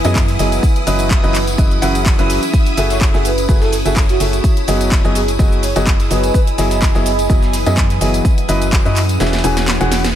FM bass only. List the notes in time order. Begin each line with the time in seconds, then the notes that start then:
0.05 F#2
0.39 F#1
0.87 F#1
1.24 F#1
1.58 F#1
1.82 F#1
2.19 F#1
2.77 F#1
3.14 F#1
3.49 F#1
3.86 F#1
4.20 F#1
4.68 F#1
5.05 F#1
5.39 F#1
5.76 F#1
6.11 F#1
6.58 F#1
6.95 F#1
7.30 F#1
7.66 F#2
8.01 F#1
8.49 F#1
8.85 F#2
9.20 E1
9.44 E1
9.81 E1